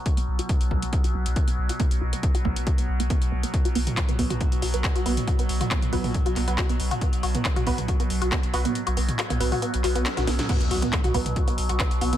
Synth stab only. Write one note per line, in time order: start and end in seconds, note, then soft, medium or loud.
4.19 4.31 B3 medium
4.19 4.31 F#4 medium
4.19 4.31 B4 loud
5.06 5.24 B3 medium
5.06 5.24 F#4 medium
5.06 5.24 B4 medium
5.93 6.05 B3 medium
5.93 6.05 F#4 medium
5.93 6.05 B4 medium
6.48 6.66 B3 medium
6.48 6.66 F#4 medium
6.48 6.66 B4 medium
7.67 7.79 B3 medium
7.67 7.79 F#4 medium
7.67 7.79 B4 loud
8.54 8.72 B3 medium
8.54 8.72 F#4 medium
8.54 8.72 B4 medium
9.40 9.53 B3 medium
9.40 9.53 F#4 medium
9.40 9.53 B4 medium
9.95 10.14 B3 medium
9.95 10.14 F#4 medium
9.95 10.14 B4 medium
11.14 11.27 B3 medium
11.14 11.27 F#4 medium
11.14 11.26 B4 loud
12.01 12.17 B3 medium
12.01 12.17 F#4 medium
12.01 12.17 B4 medium